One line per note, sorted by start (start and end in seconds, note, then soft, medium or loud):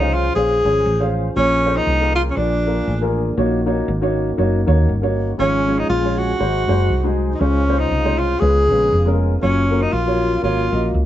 0.00 0.29 C2 medium
0.00 0.11 C#3 medium
0.00 3.34 F3 medium
0.00 0.26 C#4 medium
0.00 2.35 C#4 soft
0.00 0.15 D#4 medium
0.00 0.26 G#4 medium
0.00 1.35 G#4 medium
0.00 1.35 C5 soft
0.00 0.26 C5 medium
0.00 0.26 F5 medium
0.14 0.35 F4 medium
0.35 0.61 A#1 medium
0.35 0.56 C#4 medium
0.35 1.11 G#4 medium
0.35 0.56 G#4 medium
0.35 0.56 C5 medium
0.35 0.56 F5 medium
0.65 0.83 G#1 medium
0.65 0.87 C#4 medium
0.65 0.87 G#4 medium
0.65 0.87 C5 medium
0.65 0.88 G#5 medium
0.86 1.29 A1 medium
1.00 1.26 C#4 medium
1.00 1.26 G#4 medium
1.00 1.27 C5 medium
1.00 1.27 F5 medium
1.36 1.79 A#1 loud
1.36 2.12 A#2 medium
1.36 5.35 A#3 soft
1.36 1.56 A#3 medium
1.36 1.78 C#4 medium
1.36 1.56 F4 medium
1.36 3.35 G#4 medium
1.36 1.57 G#4 medium
1.36 1.57 C#5 medium
1.65 1.88 A#3 medium
1.65 1.88 F4 medium
1.65 1.88 G#4 medium
1.65 1.88 C5 medium
1.77 2.15 D#4 medium
1.87 2.30 C2 medium
2.00 2.27 A#3 medium
2.00 2.27 F4 medium
2.00 2.27 G#4 medium
2.00 2.27 A#4 medium
2.15 2.22 F4 medium
2.30 2.38 C#4 medium
2.37 2.80 A#1 medium
2.37 3.13 A#2 medium
2.37 2.57 A#3 medium
2.37 3.16 D4 medium
2.37 3.37 D4 medium
2.37 2.57 F4 medium
2.37 2.58 G#4 medium
2.37 2.58 D5 medium
2.66 2.88 A#3 medium
2.66 2.89 F4 medium
2.66 2.89 G#4 medium
2.66 2.89 A#4 medium
2.88 3.30 A1 medium
3.01 3.28 A#3 medium
3.01 3.28 F4 medium
3.01 3.28 G#4 medium
3.01 3.28 A#4 medium
3.37 3.80 A#1 medium
3.37 4.13 A#2 medium
3.37 5.37 D#3 medium
3.37 3.58 A#3 medium
3.37 5.37 C#4 soft
3.37 3.58 D#4 medium
3.37 3.58 F#4 medium
3.37 5.37 F#4 medium
3.37 3.58 C#5 medium
3.66 3.89 A#3 medium
3.66 3.89 D#4 medium
3.66 3.89 F#4 medium
3.66 3.90 C#5 medium
3.88 4.31 G#1 medium
4.01 4.28 A#3 medium
4.01 4.28 D#4 medium
4.01 4.29 F#4 medium
4.01 4.29 C#5 medium
4.37 4.63 F#1 medium
4.37 4.58 A#3 medium
4.37 4.58 D#4 medium
4.37 4.59 F#4 medium
4.37 4.59 C#5 medium
4.66 4.86 D#2 medium
4.66 4.89 A#3 medium
4.66 4.90 D#4 medium
4.66 4.90 F#4 medium
4.66 4.90 C#5 medium
4.89 5.32 G1 medium
5.02 5.29 A#3 medium
5.02 5.29 D#4 medium
5.02 5.29 F#4 medium
5.02 5.29 C#5 medium
5.38 5.82 G#1 medium
5.38 6.14 G#2 medium
5.38 6.39 F3 medium
5.38 5.59 G#3 medium
5.38 6.39 G#3 medium
5.38 5.59 C#4 medium
5.38 6.39 C#4 soft
5.38 5.80 C#4 medium
5.38 5.59 F4 medium
5.38 7.39 G#4 medium
5.38 5.60 C#5 medium
5.67 5.90 G#3 medium
5.67 5.90 C#4 medium
5.67 5.90 F4 medium
5.67 5.91 C#5 medium
5.79 5.89 D#4 medium
5.90 6.33 A#1 medium
5.90 6.20 F4 medium
6.03 6.30 G#3 medium
6.03 6.30 C#4 medium
6.03 6.30 F4 medium
6.03 6.30 C#5 medium
6.18 7.19 F#4 medium
6.39 6.65 G#1 medium
6.39 7.16 G#2 medium
6.39 7.40 F#3 medium
6.39 6.60 G#3 medium
6.39 6.60 D#4 medium
6.39 7.40 D#4 medium
6.39 6.60 F#4 medium
6.39 6.60 C5 medium
6.39 8.40 C5 medium
6.68 6.87 F#1 medium
6.68 6.91 G#3 medium
6.68 6.91 D#4 medium
6.68 6.92 F#4 medium
6.68 6.92 C5 medium
6.90 7.33 C2 medium
7.04 7.30 G#3 medium
7.04 7.31 D#4 medium
7.04 7.31 F#4 medium
7.04 7.31 G#4 medium
7.34 7.42 D#4 medium
7.40 7.84 C#2 medium
7.40 8.16 C#3 medium
7.40 7.61 G#3 medium
7.40 7.61 C#4 medium
7.40 7.81 C#4 medium
7.40 9.41 C#4 soft
7.40 7.61 F4 medium
7.40 11.06 F4 medium
7.40 9.41 G#4 medium
7.40 7.61 C5 medium
7.68 7.92 G#3 medium
7.68 7.92 C#4 medium
7.68 7.92 F4 medium
7.68 7.92 C5 medium
7.79 8.20 D#4 medium
7.91 8.34 C2 medium
8.04 8.31 G#3 medium
8.04 8.31 C#4 medium
8.04 8.32 F4 medium
8.04 8.32 C5 medium
8.19 8.41 F4 medium
8.40 8.66 C#2 medium
8.40 9.17 C#3 medium
8.40 8.61 G#3 medium
8.40 9.42 B3 medium
8.40 8.61 C#4 medium
8.40 8.62 F4 medium
8.40 9.20 G#4 loud
8.40 8.62 B4 medium
8.69 8.89 A#1 medium
8.69 8.93 G#3 medium
8.69 8.93 C#4 medium
8.69 8.93 F4 medium
8.69 8.93 B4 medium
8.92 9.35 F1 medium
9.06 9.32 G#3 medium
9.06 9.32 C#4 medium
9.06 9.33 F4 medium
9.06 9.33 A#4 medium
9.41 9.85 F#1 loud
9.41 11.06 F#3 medium
9.41 9.62 A#3 medium
9.41 11.06 A#3 soft
9.41 9.84 C#4 medium
9.41 11.06 C#4 soft
9.41 9.62 F4 medium
9.41 9.63 F#4 medium
9.41 9.63 C#5 medium
9.70 9.94 A#3 medium
9.70 9.94 F4 medium
9.70 9.94 F#4 medium
9.70 9.94 A#4 medium
9.82 9.94 D#4 medium
9.93 10.36 A#1 medium
9.93 10.43 F4 medium
10.07 10.33 A#3 medium
10.07 10.33 F4 medium
10.07 10.34 F#4 medium
10.07 10.34 C#5 medium
10.42 10.68 G#1 medium
10.42 10.63 A#3 medium
10.42 10.63 F4 medium
10.42 10.90 F4 medium
10.42 10.64 F#4 medium
10.42 10.64 C#5 medium
10.72 10.91 A#1 medium
10.72 10.95 A#3 medium
10.72 10.95 F4 medium
10.72 10.95 F#4 medium
10.72 10.95 D#5 medium
10.94 11.06 C#2 medium